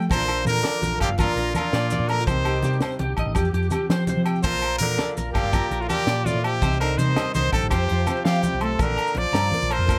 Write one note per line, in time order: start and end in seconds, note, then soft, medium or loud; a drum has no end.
0.00 0.11 A3 medium
0.00 0.11 G4 medium
0.00 maracas soft
0.10 0.44 A#1 medium
0.10 0.83 A#2 medium
0.10 0.46 F3 medium
0.10 1.19 D4 medium
0.10 0.23 A#4 medium
0.10 0.45 C5 loud
0.10 kick medium
0.10 closed hi-hat medium
0.10 high conga medium
0.10 low conga soft
0.10 low agogo medium
0.10 maracas medium
0.14 0.46 F3 medium
0.14 0.29 F4 medium
0.14 2.27 A#4 medium
0.18 low conga medium
0.28 0.65 F4 medium
0.28 0.41 A#4 medium
0.28 closed hi-hat soft
0.28 low agogo medium
0.38 maracas soft
0.45 0.63 A#2 medium
0.45 1.55 F3 medium
0.45 0.59 A#4 medium
0.45 0.98 A#4 loud
0.45 closed hi-hat soft
0.45 high conga medium
0.45 low conga soft
0.45 maracas medium
0.50 0.99 D3 medium
0.56 maracas soft
0.63 1.01 F4 medium
0.63 0.76 D5 medium
0.63 snare medium
0.63 closed hi-hat medium
0.63 low conga loud
0.63 low agogo medium
0.63 maracas soft
0.73 low conga soft
0.82 0.99 A#1 medium
0.82 0.95 A#4 medium
0.82 muted steel-string acoustic guitar stroke medium
0.82 closed hi-hat medium
0.82 high conga medium
0.82 low conga soft
0.82 maracas medium
0.92 low conga soft
1.00 1.08 G1 medium
1.00 1.11 A#2 medium
1.00 2.10 F4 medium
1.00 1.09 G4 medium
1.00 1.13 F5 medium
1.00 kick medium
1.00 snare soft
1.00 closed hi-hat soft
1.00 low agogo medium
1.09 1.26 G1 medium
1.09 low conga medium
1.18 1.91 A#2 medium
1.18 1.37 D4 medium
1.18 1.53 F4 medium
1.18 1.31 A#4 medium
1.18 kick medium
1.18 closed hi-hat medium
1.18 high conga medium
1.18 low agogo medium
1.18 maracas medium
1.22 1.54 A#2 medium
1.27 low conga soft
1.36 1.53 A#1 medium
1.36 1.74 D4 medium
1.36 1.49 A#4 medium
1.36 closed hi-hat soft
1.47 maracas soft
1.54 2.28 F3 medium
1.54 2.11 F4 medium
1.54 1.67 A#4 medium
1.54 closed hi-hat soft
1.54 high conga medium
1.54 low conga medium
1.54 low agogo medium
1.54 maracas medium
1.59 2.12 A#2 medium
1.73 1.98 A#2 medium
1.73 2.09 D4 medium
1.73 1.85 D5 medium
1.73 snare medium
1.73 closed hi-hat medium
1.73 low conga soft
1.90 2.26 A#2 medium
1.90 2.04 D5 medium
1.90 closed hi-hat soft
1.90 high conga medium
1.90 low conga medium
1.90 maracas medium
1.99 2.25 A#2 medium
2.08 2.28 D3 medium
2.08 2.20 D4 medium
2.08 2.26 A#4 medium
2.08 2.22 A#5 medium
2.08 closed hi-hat soft
2.08 low agogo medium
2.19 2.28 F4 soft
2.19 maracas soft
2.27 2.61 C2 medium
2.27 2.81 C3 medium
2.27 2.79 D#3 medium
2.27 3.36 G4 medium
2.27 2.78 C5 medium
2.27 muted clean electric guitar stroke medium
2.27 kick medium
2.27 closed hi-hat medium
2.27 high conga medium
2.27 low conga soft
2.27 low agogo medium
2.27 maracas medium
2.36 low conga medium
2.45 3.35 D#4 medium
2.45 2.58 G4 medium
2.45 closed hi-hat soft
2.45 low conga soft
2.45 low agogo medium
2.55 maracas soft
2.62 2.80 C3 medium
2.62 3.35 G3 medium
2.62 2.76 G4 medium
2.62 closed hi-hat soft
2.62 high conga medium
2.62 low conga soft
2.62 maracas medium
2.73 maracas soft
2.81 3.00 C3 medium
2.81 2.94 C5 medium
2.81 snare medium
2.81 closed hi-hat medium
2.81 low conga medium
2.81 low agogo medium
2.81 maracas soft
2.91 low conga soft
2.91 maracas soft
2.99 3.16 C2 medium
2.99 3.18 D3 medium
2.99 3.12 G4 medium
2.99 closed hi-hat soft
2.99 high conga medium
2.99 low conga soft
3.17 3.25 A1 medium
3.17 3.36 D#3 medium
3.17 3.31 D#5 medium
3.17 kick medium
3.17 closed hi-hat soft
3.17 low agogo medium
3.26 3.35 A1 medium
3.26 low conga medium
3.35 3.53 F2 medium
3.35 4.80 F3 medium
3.35 3.48 G4 medium
3.35 3.53 G4 medium
3.35 kick medium
3.35 closed hi-hat medium
3.35 high conga medium
3.35 low agogo medium
3.35 maracas medium
3.44 low conga soft
3.44 maracas soft
3.53 3.70 F2 medium
3.53 3.66 G4 medium
3.53 3.89 G4 medium
3.53 closed hi-hat soft
3.62 maracas soft
3.70 4.42 C4 medium
3.70 3.85 G4 medium
3.70 closed hi-hat medium
3.70 high conga medium
3.70 low conga medium
3.70 low agogo medium
3.70 maracas medium
3.89 4.15 F3 loud
3.89 4.25 G4 medium
3.89 4.03 C5 medium
3.89 snare medium
3.89 closed hi-hat medium
3.89 low conga soft
4.07 4.44 C3 medium
4.07 4.21 C5 medium
4.07 closed hi-hat soft
4.07 high conga medium
4.07 low conga medium
4.07 maracas medium
4.17 4.42 F3 medium
4.17 low conga soft
4.25 4.44 G4 medium
4.25 4.38 G5 medium
4.25 closed hi-hat soft
4.25 low agogo medium
4.35 low conga soft
4.35 maracas soft
4.43 4.78 A#1 medium
4.43 5.16 A#2 medium
4.43 4.78 F3 loud
4.43 6.60 A#4 medium
4.43 4.57 A#4 medium
4.43 4.78 C5 loud
4.43 kick medium
4.43 closed hi-hat medium
4.43 high conga medium
4.43 low conga soft
4.43 low agogo soft
4.43 maracas medium
4.55 low conga medium
4.62 4.98 F4 medium
4.62 4.76 A#4 medium
4.62 closed hi-hat medium
4.62 low agogo medium
4.71 maracas soft
4.78 4.97 A#2 medium
4.78 5.15 D3 medium
4.78 5.88 F3 medium
4.78 5.13 A#4 loud
4.78 4.93 A#4 medium
4.78 closed hi-hat soft
4.78 high conga medium
4.78 low conga soft
4.78 maracas medium
4.98 5.35 F4 medium
4.98 5.11 D5 medium
4.98 snare medium
4.98 closed hi-hat medium
4.98 low conga medium
4.98 low agogo medium
5.08 low conga soft
5.08 maracas soft
5.17 5.34 A#1 medium
5.17 5.52 A#2 medium
5.17 5.29 A#4 medium
5.17 closed hi-hat soft
5.17 high conga medium
5.17 low conga soft
5.17 maracas medium
5.27 low conga soft
5.34 5.42 G1 medium
5.34 5.81 A#2 medium
5.34 5.53 F4 medium
5.34 5.83 G4 medium
5.34 5.47 F5 medium
5.34 kick medium
5.34 snare soft
5.34 closed hi-hat soft
5.34 low agogo medium
5.43 5.60 G1 medium
5.43 low conga medium
5.53 6.25 A#2 medium
5.53 5.71 F4 medium
5.53 5.66 A#4 medium
5.53 kick medium
5.53 closed hi-hat medium
5.53 high conga medium
5.53 low agogo medium
5.53 maracas medium
5.63 maracas soft
5.71 5.88 A#1 medium
5.71 6.08 F4 medium
5.71 5.84 A#4 medium
5.71 closed hi-hat soft
5.80 5.89 A2 medium
5.80 5.88 F4 medium
5.80 maracas soft
5.89 6.26 A#2 medium
5.89 6.62 F3 medium
5.89 6.27 G4 loud
5.89 6.02 A#4 medium
5.89 closed hi-hat soft
5.89 high conga medium
5.89 low conga medium
5.89 low agogo medium
5.89 maracas medium
6.07 6.32 A#2 loud
6.07 6.44 F4 medium
6.07 6.20 D5 medium
6.07 snare medium
6.07 closed hi-hat medium
6.25 6.45 A2 medium
6.25 6.60 A#2 medium
6.25 6.46 F4 medium
6.25 6.38 D5 medium
6.25 closed hi-hat soft
6.25 high conga medium
6.25 low conga medium
6.25 maracas medium
6.35 6.60 A#2 medium
6.35 low conga soft
6.44 6.79 C3 medium
6.44 6.61 F4 medium
6.44 6.80 G4 medium
6.44 closed hi-hat soft
6.44 low agogo medium
6.54 low conga soft
6.54 maracas soft
6.62 6.96 C2 medium
6.62 7.17 C3 medium
6.62 6.81 D#4 medium
6.62 6.74 C5 medium
6.62 kick medium
6.62 closed hi-hat medium
6.62 high conga medium
6.62 low agogo medium
6.62 maracas medium
6.71 low conga medium
6.71 maracas soft
6.80 6.99 D3 medium
6.80 7.70 D#4 medium
6.80 6.99 A#4 medium
6.80 6.92 C5 medium
6.80 closed hi-hat soft
6.80 low agogo medium
6.90 low conga soft
6.98 7.15 C3 medium
6.98 7.34 D#3 medium
6.98 7.69 G3 medium
6.98 7.34 C5 medium
6.98 7.10 C5 medium
6.98 closed hi-hat soft
6.98 high conga medium
6.98 low conga soft
6.98 maracas medium
7.16 7.36 C3 medium
7.16 7.29 D#5 medium
7.16 snare medium
7.16 closed hi-hat medium
7.16 low conga medium
7.16 low agogo medium
7.26 low conga soft
7.35 7.51 C2 medium
7.35 7.53 D3 medium
7.35 7.52 D#3 medium
7.35 7.51 C5 medium
7.35 7.47 C5 medium
7.35 closed hi-hat medium
7.35 high conga medium
7.35 maracas loud
7.45 low conga soft
7.52 7.61 A1 medium
7.52 7.70 C3 medium
7.52 7.72 D#3 medium
7.52 7.70 A4 medium
7.52 7.65 G5 medium
7.52 kick medium
7.52 snare soft
7.52 closed hi-hat soft
7.52 low agogo medium
7.63 7.70 A1 medium
7.63 low conga medium
7.70 7.88 F2 medium
7.70 8.22 C3 medium
7.70 8.26 F3 medium
7.70 7.90 F4 medium
7.70 8.21 G4 medium
7.70 7.83 C5 medium
7.70 kick medium
7.70 closed hi-hat medium
7.70 high conga medium
7.70 low agogo medium
7.70 maracas medium
7.88 8.07 F2 medium
7.88 8.01 C5 medium
7.88 closed hi-hat soft
7.88 low conga soft
7.92 8.79 F4 medium
7.99 maracas soft
8.07 8.78 C4 medium
8.07 8.19 C5 medium
8.07 closed hi-hat medium
8.07 high conga medium
8.07 low conga medium
8.07 low agogo medium
8.07 maracas medium
8.16 low conga soft
8.16 maracas soft
8.25 8.64 C3 medium
8.25 8.50 F3 medium
8.25 8.44 F3 medium
8.25 8.64 G4 medium
8.25 8.37 F5 medium
8.25 snare medium
8.25 closed hi-hat medium
8.25 maracas soft
8.35 maracas soft
8.43 8.62 G3 medium
8.43 8.55 G5 medium
8.43 closed hi-hat soft
8.43 high conga medium
8.43 low conga medium
8.43 maracas loud
8.53 8.78 B1 medium
8.61 8.81 C3 medium
8.61 8.80 A3 medium
8.61 8.80 A4 medium
8.61 8.73 C6 medium
8.61 closed hi-hat soft
8.61 low agogo medium
8.61 maracas soft
8.79 8.97 A#1 medium
8.79 9.52 A#2 medium
8.79 9.20 D3 medium
8.79 9.19 A#4 medium
8.79 muted clean electric guitar stroke medium
8.79 kick medium
8.79 closed hi-hat medium
8.79 high conga medium
8.79 low agogo medium
8.79 maracas medium
8.88 low conga medium
8.97 9.09 A#5 medium
8.97 closed hi-hat soft
8.97 low conga soft
8.97 low agogo medium
9.07 maracas medium
9.15 9.25 A#1 medium
9.15 9.99 F3 medium
9.15 9.74 F3 medium
9.15 9.74 D5 loud
9.15 closed hi-hat soft
9.15 high conga medium
9.24 low conga soft
9.33 9.51 G2 loud
9.33 9.71 F4 medium
9.33 9.46 A#5 medium
9.33 snare medium
9.33 closed hi-hat medium
9.33 low conga medium
9.33 low agogo medium
9.33 maracas loud
9.51 9.89 A#2 medium
9.51 9.99 A#4 medium
9.51 closed hi-hat medium
9.51 high conga medium
9.51 low conga soft
9.62 9.78 A#1 loud
9.62 maracas medium
9.71 9.99 F3 medium
9.71 9.83 A#4 medium
9.71 9.99 C5 medium
9.71 closed hi-hat soft
9.71 low agogo medium
9.79 9.99 F2 medium
9.79 low conga medium
9.88 9.99 A#2 medium
9.88 9.99 A#4 medium
9.88 kick medium
9.88 closed hi-hat medium
9.88 high conga medium
9.88 low agogo medium
9.88 maracas medium